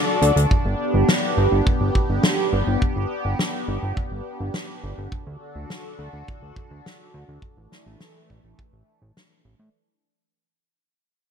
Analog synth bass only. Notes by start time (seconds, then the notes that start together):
0.22 D2
0.36 D2
0.65 G1
0.94 G1
1.37 G1
1.52 G1
1.81 G1
2.10 G1
2.53 G1
2.67 G1
2.96 G1
3.25 G1
3.68 G1
3.83 G1
4.12 G1
4.40 G1
4.84 G1
4.98 G1
5.27 D2
5.55 D2
5.99 D2
6.13 D2
6.42 D2
6.71 D2
7.14 D2
7.28 D2
7.57 A1
7.86 A1
8.30 A1
8.44 A1
8.73 A1
9.02 A1
9.45 A1
9.59 A2